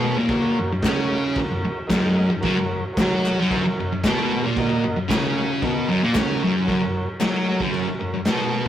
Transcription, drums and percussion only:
0.29 kick loud
0.29 crash medium
0.82 kick loud
0.82 snare loud
0.82 clap loud
0.82 crash medium
1.36 kick loud
1.36 crash medium
1.89 kick loud
1.89 snare loud
1.89 clap loud
1.89 crash medium
2.42 kick loud
2.42 crash medium
2.97 kick loud
2.97 snare loud
2.97 clap loud
2.97 crash medium
3.26 clap medium
3.51 kick loud
3.51 crash medium
4.03 kick loud
4.03 snare loud
4.03 clap loud
4.03 crash medium
4.57 kick loud
4.57 crash medium
5.09 kick loud
5.09 snare loud
5.09 clap loud
5.09 crash medium
5.62 kick loud
5.62 crash medium
6.15 kick loud
6.15 snare loud
6.15 clap loud
6.15 crash medium
6.68 kick loud
6.68 crash medium
7.20 snare loud
7.20 clap loud
7.20 crash medium
7.60 kick loud
7.74 crash medium
8.25 snare loud
8.25 clap loud
8.25 crash medium

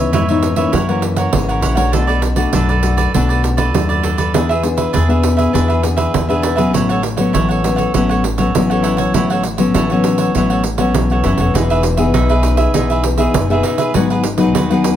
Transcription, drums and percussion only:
0.13 pandeiro medium
0.28 pandeiro soft
0.43 pandeiro medium
0.56 pandeiro medium
0.73 pandeiro medium
0.89 pandeiro soft
1.02 pandeiro medium
1.16 pandeiro medium
1.33 pandeiro medium
1.49 pandeiro soft
1.62 pandeiro medium
1.77 pandeiro medium
1.93 pandeiro medium
2.09 pandeiro soft
2.22 pandeiro medium
2.36 pandeiro medium
2.53 pandeiro medium
2.69 pandeiro soft
2.83 pandeiro medium
2.98 pandeiro medium
3.14 pandeiro medium
3.30 pandeiro soft
3.44 pandeiro medium
3.58 pandeiro medium
3.74 pandeiro medium
3.90 pandeiro soft
4.03 pandeiro medium
4.18 pandeiro medium
4.34 pandeiro medium
4.51 pandeiro soft
4.63 pandeiro medium
4.78 pandeiro medium
4.94 pandeiro medium
5.10 pandeiro soft
5.23 pandeiro medium
5.39 pandeiro soft
5.55 pandeiro medium
5.70 pandeiro soft
5.83 pandeiro medium
5.97 pandeiro medium
6.14 pandeiro medium
6.30 pandeiro soft
6.43 pandeiro medium
6.58 pandeiro medium
6.74 pandeiro medium
6.90 pandeiro soft
7.03 pandeiro medium
7.17 pandeiro medium
7.35 pandeiro medium
7.51 pandeiro soft
7.64 pandeiro medium
7.78 pandeiro medium
7.94 pandeiro medium
8.11 pandeiro soft
8.24 pandeiro medium
8.38 pandeiro medium
8.55 pandeiro medium
8.71 pandeiro soft
8.84 pandeiro medium
8.98 pandeiro medium
9.14 pandeiro medium
9.30 pandeiro soft
9.43 pandeiro medium
9.58 pandeiro medium
9.74 pandeiro medium
9.90 pandeiro soft
10.04 pandeiro medium
10.18 pandeiro medium
10.35 pandeiro medium
10.50 pandeiro soft
10.64 pandeiro medium
10.78 pandeiro medium
10.94 pandeiro medium
11.10 pandeiro soft
11.24 pandeiro medium
11.37 pandeiro soft
11.55 pandeiro medium
11.70 pandeiro soft
11.83 pandeiro medium
11.97 pandeiro medium
12.14 pandeiro medium
12.29 pandeiro soft
12.43 pandeiro medium
12.57 pandeiro medium
12.74 pandeiro medium
12.90 pandeiro soft
13.04 pandeiro medium
13.18 pandeiro medium
13.34 pandeiro loud
13.50 pandeiro soft
13.63 pandeiro medium
13.78 pandeiro medium
13.94 pandeiro medium
14.10 pandeiro soft
14.24 pandeiro medium
14.38 pandeiro medium
14.55 pandeiro medium
14.71 pandeiro soft
14.84 pandeiro medium

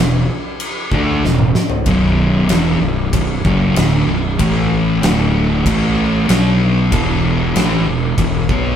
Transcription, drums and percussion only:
0.60 crash medium
0.92 kick loud
1.25 snare medium
1.38 mid tom medium
1.55 snare medium
1.70 floor tom medium
1.86 kick loud
1.86 crash medium
2.49 snare loud
2.49 crash medium
3.13 kick loud
3.13 crash medium
3.45 kick loud
3.76 snare loud
3.76 crash medium
4.39 kick loud
4.39 crash medium
5.03 snare loud
5.03 crash medium
5.66 kick loud
5.66 crash medium
6.29 snare loud
6.29 crash medium
6.92 kick loud
6.92 crash medium
7.56 snare loud
7.56 crash medium
8.18 kick loud
8.18 crash medium
8.49 kick loud

